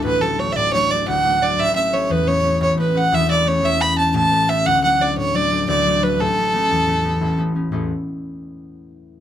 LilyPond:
<<
  \new Staff \with { instrumentName = "Fiddle" } { \time 9/8 \key a \major \tempo 4. = 117 b'8 a'8 cis''16. e''32 d''8 cis''8 d''8 fis''4 d''8 | e''8 e''8 cis''8 b'8 cis''4 cis''8 b'8 fis''8 | e''8 d''8 cis''8 e''8 b''8 a''8 a''4 e''8 | fis''8 fis''8 d''8 cis''8 d''4 d''4 b'8 |
a'2.~ a'8 r4 | r1 r8 | }
  \new Staff \with { instrumentName = "Harp" } { \time 9/8 \key a \major <d,, a,, a, fis a d'>8 <fis a d'>8 <fis a d'>8 a,8 <fis a d'>8 <fis a d'>8 <d,, d,>8 <fis a d'>8 <fis a d'>8 | <a,, a,>8 <a b cis'>8 <a b cis'>8 e,8 <a b cis'>8 <a b cis'>8 <a,, a,>8 <a b cis'>8 <a b cis'>8 | <e,, e,>8 <a b cis'>8 <a b cis'>8 e,8 <a b cis'>8 <a b cis'>8 <a,, a,>8 <a b cis'>8 <a b cis'>8 | <d,, d,>8 <fis a d'>8 <fis a d'>8 a,8 <fis a d'>8 <fis a d'>8 <d,, d,>8 <fis a d'>8 <fis a d'>8 |
<a,, a,>8 <a b cis'>8 <a b cis'>8 e,8 <a b cis'>8 <a b cis'>8 <a,, a,>8 <a b cis'>8 <a b cis'>8 | <a,, e, e b cis' a'>8 r1 | }
>>